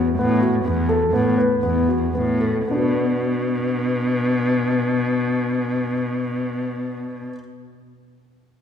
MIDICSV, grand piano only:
0, 0, Header, 1, 2, 480
1, 0, Start_track
1, 0, Key_signature, 2, "minor"
1, 0, Tempo, 471328
1, 1155, Tempo, 504202
1, 2115, Tempo, 544959
1, 2585, Time_signature, 7, 2, 24, 8
1, 7818, End_track
2, 0, Start_track
2, 0, Title_t, "Grand piano"
2, 0, Program_c, 0, 0
2, 0, Note_on_c, 0, 66, 48
2, 157, Note_off_c, 0, 66, 0
2, 193, Note_on_c, 0, 59, 59
2, 395, Note_off_c, 0, 59, 0
2, 426, Note_on_c, 0, 66, 54
2, 632, Note_off_c, 0, 66, 0
2, 663, Note_on_c, 0, 59, 50
2, 873, Note_off_c, 0, 59, 0
2, 906, Note_on_c, 0, 69, 59
2, 1119, Note_off_c, 0, 69, 0
2, 1152, Note_on_c, 0, 59, 61
2, 1354, Note_off_c, 0, 59, 0
2, 1386, Note_on_c, 0, 71, 61
2, 1591, Note_off_c, 0, 71, 0
2, 1627, Note_on_c, 0, 59, 63
2, 1834, Note_off_c, 0, 59, 0
2, 1870, Note_on_c, 0, 66, 48
2, 2081, Note_off_c, 0, 66, 0
2, 2118, Note_on_c, 0, 59, 52
2, 2316, Note_off_c, 0, 59, 0
2, 2343, Note_on_c, 0, 69, 44
2, 2549, Note_off_c, 0, 69, 0
2, 2583, Note_on_c, 0, 59, 46
2, 2615, Note_on_c, 0, 62, 43
2, 2653, Note_on_c, 0, 66, 44
2, 2688, Note_on_c, 0, 71, 41
2, 6635, Note_off_c, 0, 59, 0
2, 6668, Note_off_c, 0, 62, 0
2, 6705, Note_off_c, 0, 66, 0
2, 6741, Note_off_c, 0, 71, 0
2, 7818, End_track
0, 0, End_of_file